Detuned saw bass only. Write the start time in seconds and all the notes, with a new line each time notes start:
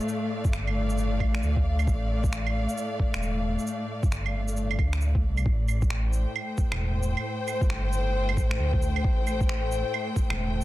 0.45 G1
1.20 A1
1.43 D2
1.87 A1
3.14 E1
4.03 G1
4.78 D2
5.24 C2
5.46 A1
6.72 E1
7.61 G1
8.37 A1
8.59 D2
9.04 A1
10.30 E1